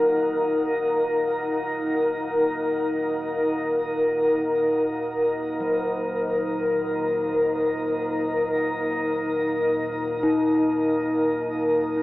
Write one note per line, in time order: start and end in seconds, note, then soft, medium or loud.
0.00 12.03 D#2 medium
0.00 12.03 A#2 medium
0.00 2.37 F#3 medium
0.00 12.03 D#4 medium
0.00 12.03 A#4 medium
0.00 12.03 F5 medium
0.00 12.03 F#5 medium
5.60 12.03 F#3 medium
10.23 12.03 D#4 medium